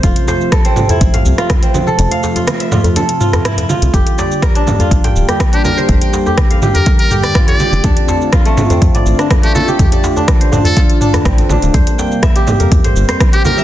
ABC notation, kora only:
X:1
M:4/4
L:1/16
Q:1/4=123
K:Gdor
V:1 name="Kora"
F z c z A C z E z f z F z C z A | z f z F z e F z A z F z E z F z | G z d z B D z F z g z G z D z c | z g z G z f G z B z G z F z G z |
D z A z F A, z C z d z D z A, z G | z d z D z c D z F z D z C z D z | c z g z e G z B z c z c z G z e |]